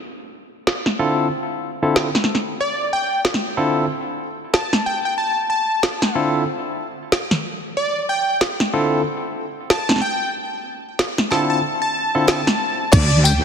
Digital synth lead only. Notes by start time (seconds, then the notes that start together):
2.61 D5
2.93 G5
4.54 A5
4.86 G5
5.05 G5
5.18 A5
5.50 A5
7.77 D5
8.09 G5
9.70 A5
10.01 G5
11.31 A5
11.50 A5
11.82 A5
12.27 A5
12.92 D5
13.24 G5